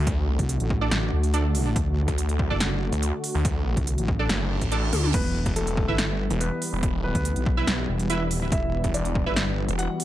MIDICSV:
0, 0, Header, 1, 8, 480
1, 0, Start_track
1, 0, Key_signature, 1, "minor"
1, 0, Tempo, 422535
1, 78, Time_signature, 4, 2, 24, 8
1, 11409, End_track
2, 0, Start_track
2, 0, Title_t, "Synth stab"
2, 0, Program_c, 0, 62
2, 923, Note_on_c, 0, 62, 87
2, 923, Note_on_c, 0, 69, 79
2, 923, Note_on_c, 0, 74, 92
2, 1031, Note_off_c, 0, 62, 0
2, 1031, Note_off_c, 0, 69, 0
2, 1031, Note_off_c, 0, 74, 0
2, 1519, Note_on_c, 0, 62, 88
2, 1519, Note_on_c, 0, 69, 79
2, 1519, Note_on_c, 0, 74, 94
2, 1635, Note_off_c, 0, 62, 0
2, 1635, Note_off_c, 0, 69, 0
2, 1635, Note_off_c, 0, 74, 0
2, 2842, Note_on_c, 0, 69, 74
2, 2842, Note_on_c, 0, 74, 88
2, 2843, Note_on_c, 0, 62, 83
2, 2910, Note_off_c, 0, 69, 0
2, 2910, Note_off_c, 0, 74, 0
2, 2911, Note_off_c, 0, 62, 0
2, 4762, Note_on_c, 0, 62, 85
2, 4762, Note_on_c, 0, 69, 76
2, 4762, Note_on_c, 0, 74, 95
2, 4871, Note_off_c, 0, 62, 0
2, 4871, Note_off_c, 0, 69, 0
2, 4871, Note_off_c, 0, 74, 0
2, 5358, Note_on_c, 0, 62, 84
2, 5358, Note_on_c, 0, 69, 76
2, 5358, Note_on_c, 0, 74, 99
2, 5475, Note_off_c, 0, 62, 0
2, 5475, Note_off_c, 0, 69, 0
2, 5475, Note_off_c, 0, 74, 0
2, 6682, Note_on_c, 0, 64, 83
2, 6682, Note_on_c, 0, 71, 75
2, 6682, Note_on_c, 0, 76, 90
2, 6750, Note_off_c, 0, 64, 0
2, 6750, Note_off_c, 0, 71, 0
2, 6750, Note_off_c, 0, 76, 0
2, 8603, Note_on_c, 0, 64, 87
2, 8603, Note_on_c, 0, 71, 79
2, 8603, Note_on_c, 0, 76, 97
2, 8711, Note_off_c, 0, 64, 0
2, 8711, Note_off_c, 0, 71, 0
2, 8711, Note_off_c, 0, 76, 0
2, 9199, Note_on_c, 0, 64, 87
2, 9199, Note_on_c, 0, 71, 76
2, 9199, Note_on_c, 0, 76, 97
2, 9315, Note_off_c, 0, 64, 0
2, 9315, Note_off_c, 0, 71, 0
2, 9315, Note_off_c, 0, 76, 0
2, 10523, Note_on_c, 0, 64, 82
2, 10523, Note_on_c, 0, 71, 77
2, 10523, Note_on_c, 0, 76, 86
2, 10591, Note_off_c, 0, 64, 0
2, 10591, Note_off_c, 0, 71, 0
2, 10591, Note_off_c, 0, 76, 0
2, 11409, End_track
3, 0, Start_track
3, 0, Title_t, "Grand piano"
3, 0, Program_c, 1, 0
3, 5838, Note_on_c, 1, 59, 75
3, 5838, Note_on_c, 1, 71, 97
3, 6237, Note_off_c, 1, 59, 0
3, 6237, Note_off_c, 1, 71, 0
3, 6318, Note_on_c, 1, 57, 75
3, 6318, Note_on_c, 1, 69, 97
3, 7185, Note_off_c, 1, 69, 0
3, 7186, Note_off_c, 1, 57, 0
3, 7278, Note_on_c, 1, 59, 76
3, 7279, Note_on_c, 1, 71, 91
3, 7906, Note_off_c, 1, 59, 0
3, 7906, Note_off_c, 1, 71, 0
3, 7998, Note_on_c, 1, 59, 78
3, 7998, Note_on_c, 1, 71, 98
3, 8865, Note_off_c, 1, 59, 0
3, 8865, Note_off_c, 1, 71, 0
3, 9679, Note_on_c, 1, 64, 76
3, 9679, Note_on_c, 1, 76, 97
3, 10078, Note_off_c, 1, 64, 0
3, 10078, Note_off_c, 1, 76, 0
3, 10158, Note_on_c, 1, 74, 94
3, 10159, Note_on_c, 1, 62, 78
3, 11026, Note_off_c, 1, 62, 0
3, 11026, Note_off_c, 1, 74, 0
3, 11118, Note_on_c, 1, 78, 94
3, 11119, Note_on_c, 1, 66, 78
3, 11409, Note_off_c, 1, 66, 0
3, 11409, Note_off_c, 1, 78, 0
3, 11409, End_track
4, 0, Start_track
4, 0, Title_t, "Supersaw synth"
4, 0, Program_c, 2, 81
4, 0, Note_on_c, 2, 50, 78
4, 0, Note_on_c, 2, 57, 72
4, 0, Note_on_c, 2, 66, 91
4, 5793, Note_off_c, 2, 50, 0
4, 5793, Note_off_c, 2, 57, 0
4, 5793, Note_off_c, 2, 66, 0
4, 5838, Note_on_c, 2, 52, 78
4, 5839, Note_on_c, 2, 55, 89
4, 5839, Note_on_c, 2, 59, 73
4, 11409, Note_off_c, 2, 52, 0
4, 11409, Note_off_c, 2, 55, 0
4, 11409, Note_off_c, 2, 59, 0
4, 11409, End_track
5, 0, Start_track
5, 0, Title_t, "Wobble bass"
5, 0, Program_c, 3, 39
5, 443, Note_on_c, 3, 36, 98
5, 663, Note_off_c, 3, 36, 0
5, 683, Note_on_c, 3, 33, 96
5, 1020, Note_off_c, 3, 33, 0
5, 1039, Note_on_c, 3, 33, 102
5, 1260, Note_off_c, 3, 33, 0
5, 1279, Note_on_c, 3, 38, 99
5, 1980, Note_off_c, 3, 38, 0
5, 1999, Note_on_c, 3, 38, 94
5, 2343, Note_off_c, 3, 38, 0
5, 2842, Note_on_c, 3, 30, 99
5, 3303, Note_off_c, 3, 30, 0
5, 4282, Note_on_c, 3, 36, 96
5, 4503, Note_off_c, 3, 36, 0
5, 4522, Note_on_c, 3, 33, 96
5, 4860, Note_off_c, 3, 33, 0
5, 5598, Note_on_c, 3, 38, 98
5, 5820, Note_off_c, 3, 38, 0
5, 5838, Note_on_c, 3, 28, 97
5, 6183, Note_off_c, 3, 28, 0
5, 6682, Note_on_c, 3, 31, 96
5, 7142, Note_off_c, 3, 31, 0
5, 8123, Note_on_c, 3, 38, 101
5, 8343, Note_off_c, 3, 38, 0
5, 8362, Note_on_c, 3, 35, 98
5, 8700, Note_off_c, 3, 35, 0
5, 8718, Note_on_c, 3, 35, 96
5, 8940, Note_off_c, 3, 35, 0
5, 8958, Note_on_c, 3, 28, 95
5, 9458, Note_off_c, 3, 28, 0
5, 9458, Note_on_c, 3, 27, 95
5, 9660, Note_off_c, 3, 27, 0
5, 9678, Note_on_c, 3, 28, 99
5, 10022, Note_off_c, 3, 28, 0
5, 10522, Note_on_c, 3, 31, 97
5, 10983, Note_off_c, 3, 31, 0
5, 11409, End_track
6, 0, Start_track
6, 0, Title_t, "Detuned saw bass"
6, 0, Program_c, 4, 39
6, 0, Note_on_c, 4, 38, 98
6, 423, Note_off_c, 4, 38, 0
6, 2362, Note_on_c, 4, 38, 102
6, 2823, Note_off_c, 4, 38, 0
6, 3322, Note_on_c, 4, 38, 98
6, 3543, Note_off_c, 4, 38, 0
6, 3802, Note_on_c, 4, 38, 98
6, 4262, Note_off_c, 4, 38, 0
6, 4878, Note_on_c, 4, 30, 97
6, 5222, Note_off_c, 4, 30, 0
6, 5242, Note_on_c, 4, 33, 97
6, 5580, Note_off_c, 4, 33, 0
6, 6202, Note_on_c, 4, 28, 100
6, 6662, Note_off_c, 4, 28, 0
6, 7161, Note_on_c, 4, 28, 96
6, 7382, Note_off_c, 4, 28, 0
6, 7642, Note_on_c, 4, 28, 97
6, 8102, Note_off_c, 4, 28, 0
6, 10042, Note_on_c, 4, 28, 97
6, 10502, Note_off_c, 4, 28, 0
6, 11002, Note_on_c, 4, 28, 101
6, 11222, Note_off_c, 4, 28, 0
6, 11409, End_track
7, 0, Start_track
7, 0, Title_t, "Reverse cymbal"
7, 0, Program_c, 5, 119
7, 4878, Note_on_c, 5, 60, 62
7, 5838, Note_off_c, 5, 60, 0
7, 11409, End_track
8, 0, Start_track
8, 0, Title_t, "Drums"
8, 78, Note_on_c, 9, 42, 74
8, 79, Note_on_c, 9, 36, 112
8, 192, Note_off_c, 9, 36, 0
8, 192, Note_off_c, 9, 42, 0
8, 443, Note_on_c, 9, 36, 59
8, 443, Note_on_c, 9, 42, 50
8, 556, Note_off_c, 9, 36, 0
8, 556, Note_off_c, 9, 42, 0
8, 558, Note_on_c, 9, 42, 80
8, 672, Note_off_c, 9, 42, 0
8, 683, Note_on_c, 9, 42, 50
8, 796, Note_off_c, 9, 42, 0
8, 799, Note_on_c, 9, 36, 106
8, 912, Note_off_c, 9, 36, 0
8, 1039, Note_on_c, 9, 38, 118
8, 1039, Note_on_c, 9, 42, 77
8, 1152, Note_off_c, 9, 38, 0
8, 1152, Note_off_c, 9, 42, 0
8, 1403, Note_on_c, 9, 42, 53
8, 1516, Note_off_c, 9, 42, 0
8, 1518, Note_on_c, 9, 42, 77
8, 1632, Note_off_c, 9, 42, 0
8, 1758, Note_on_c, 9, 46, 90
8, 1872, Note_off_c, 9, 46, 0
8, 1998, Note_on_c, 9, 36, 114
8, 1998, Note_on_c, 9, 42, 80
8, 2112, Note_off_c, 9, 36, 0
8, 2112, Note_off_c, 9, 42, 0
8, 2362, Note_on_c, 9, 36, 57
8, 2362, Note_on_c, 9, 42, 53
8, 2476, Note_off_c, 9, 36, 0
8, 2476, Note_off_c, 9, 42, 0
8, 2479, Note_on_c, 9, 42, 79
8, 2592, Note_off_c, 9, 42, 0
8, 2602, Note_on_c, 9, 42, 54
8, 2716, Note_off_c, 9, 42, 0
8, 2718, Note_on_c, 9, 36, 101
8, 2832, Note_off_c, 9, 36, 0
8, 2958, Note_on_c, 9, 38, 114
8, 2958, Note_on_c, 9, 42, 78
8, 3072, Note_off_c, 9, 38, 0
8, 3072, Note_off_c, 9, 42, 0
8, 3322, Note_on_c, 9, 42, 53
8, 3436, Note_off_c, 9, 42, 0
8, 3438, Note_on_c, 9, 42, 82
8, 3551, Note_off_c, 9, 42, 0
8, 3678, Note_on_c, 9, 46, 100
8, 3791, Note_off_c, 9, 46, 0
8, 3918, Note_on_c, 9, 36, 117
8, 3918, Note_on_c, 9, 42, 84
8, 4031, Note_off_c, 9, 42, 0
8, 4032, Note_off_c, 9, 36, 0
8, 4282, Note_on_c, 9, 36, 58
8, 4282, Note_on_c, 9, 42, 56
8, 4396, Note_off_c, 9, 36, 0
8, 4396, Note_off_c, 9, 42, 0
8, 4398, Note_on_c, 9, 42, 82
8, 4512, Note_off_c, 9, 42, 0
8, 4522, Note_on_c, 9, 42, 56
8, 4636, Note_off_c, 9, 42, 0
8, 4638, Note_on_c, 9, 36, 105
8, 4752, Note_off_c, 9, 36, 0
8, 4878, Note_on_c, 9, 38, 114
8, 4878, Note_on_c, 9, 42, 79
8, 4992, Note_off_c, 9, 38, 0
8, 4992, Note_off_c, 9, 42, 0
8, 5242, Note_on_c, 9, 36, 59
8, 5242, Note_on_c, 9, 42, 55
8, 5356, Note_off_c, 9, 36, 0
8, 5356, Note_off_c, 9, 42, 0
8, 5358, Note_on_c, 9, 42, 81
8, 5472, Note_off_c, 9, 42, 0
8, 5598, Note_on_c, 9, 46, 98
8, 5598, Note_on_c, 9, 48, 63
8, 5712, Note_off_c, 9, 46, 0
8, 5712, Note_off_c, 9, 48, 0
8, 5722, Note_on_c, 9, 47, 76
8, 5836, Note_off_c, 9, 47, 0
8, 5838, Note_on_c, 9, 36, 123
8, 5838, Note_on_c, 9, 42, 87
8, 5838, Note_on_c, 9, 49, 79
8, 5951, Note_off_c, 9, 42, 0
8, 5951, Note_off_c, 9, 49, 0
8, 5952, Note_off_c, 9, 36, 0
8, 6202, Note_on_c, 9, 36, 63
8, 6202, Note_on_c, 9, 42, 56
8, 6315, Note_off_c, 9, 42, 0
8, 6316, Note_off_c, 9, 36, 0
8, 6318, Note_on_c, 9, 42, 83
8, 6432, Note_off_c, 9, 42, 0
8, 6442, Note_on_c, 9, 42, 58
8, 6556, Note_off_c, 9, 42, 0
8, 6558, Note_on_c, 9, 36, 109
8, 6672, Note_off_c, 9, 36, 0
8, 6798, Note_on_c, 9, 38, 118
8, 6798, Note_on_c, 9, 42, 85
8, 6911, Note_off_c, 9, 38, 0
8, 6911, Note_off_c, 9, 42, 0
8, 7162, Note_on_c, 9, 42, 58
8, 7276, Note_off_c, 9, 42, 0
8, 7278, Note_on_c, 9, 42, 84
8, 7392, Note_off_c, 9, 42, 0
8, 7518, Note_on_c, 9, 46, 95
8, 7632, Note_off_c, 9, 46, 0
8, 7758, Note_on_c, 9, 36, 122
8, 7758, Note_on_c, 9, 42, 86
8, 7872, Note_off_c, 9, 36, 0
8, 7872, Note_off_c, 9, 42, 0
8, 8122, Note_on_c, 9, 36, 65
8, 8122, Note_on_c, 9, 42, 57
8, 8236, Note_off_c, 9, 36, 0
8, 8236, Note_off_c, 9, 42, 0
8, 8238, Note_on_c, 9, 42, 88
8, 8351, Note_off_c, 9, 42, 0
8, 8362, Note_on_c, 9, 42, 57
8, 8476, Note_off_c, 9, 42, 0
8, 8478, Note_on_c, 9, 36, 112
8, 8592, Note_off_c, 9, 36, 0
8, 8718, Note_on_c, 9, 38, 123
8, 8718, Note_on_c, 9, 42, 83
8, 8831, Note_off_c, 9, 38, 0
8, 8831, Note_off_c, 9, 42, 0
8, 9082, Note_on_c, 9, 42, 57
8, 9196, Note_off_c, 9, 42, 0
8, 9198, Note_on_c, 9, 42, 87
8, 9312, Note_off_c, 9, 42, 0
8, 9438, Note_on_c, 9, 46, 95
8, 9551, Note_off_c, 9, 46, 0
8, 9678, Note_on_c, 9, 36, 122
8, 9678, Note_on_c, 9, 42, 82
8, 9792, Note_off_c, 9, 36, 0
8, 9792, Note_off_c, 9, 42, 0
8, 10042, Note_on_c, 9, 36, 65
8, 10042, Note_on_c, 9, 42, 57
8, 10156, Note_off_c, 9, 36, 0
8, 10156, Note_off_c, 9, 42, 0
8, 10158, Note_on_c, 9, 42, 84
8, 10272, Note_off_c, 9, 42, 0
8, 10283, Note_on_c, 9, 42, 57
8, 10396, Note_off_c, 9, 42, 0
8, 10398, Note_on_c, 9, 36, 117
8, 10512, Note_off_c, 9, 36, 0
8, 10638, Note_on_c, 9, 38, 127
8, 10638, Note_on_c, 9, 42, 82
8, 10752, Note_off_c, 9, 38, 0
8, 10752, Note_off_c, 9, 42, 0
8, 11002, Note_on_c, 9, 42, 57
8, 11116, Note_off_c, 9, 42, 0
8, 11118, Note_on_c, 9, 42, 83
8, 11232, Note_off_c, 9, 42, 0
8, 11358, Note_on_c, 9, 46, 93
8, 11409, Note_off_c, 9, 46, 0
8, 11409, End_track
0, 0, End_of_file